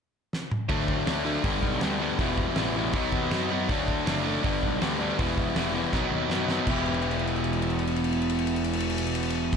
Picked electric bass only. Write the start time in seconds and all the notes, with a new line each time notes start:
0.69 D2
1.08 D2
1.44 G1
1.63 B1
1.83 D2
2.19 E1
2.56 A1
2.93 B1
3.13 D#2
3.31 F#2
3.69 D2
4.08 F#1
4.44 G1
4.63 B1
4.82 D2
5.19 E1
5.55 E1
5.94 B1
6.12 D#2
6.29 F#2
6.68 E1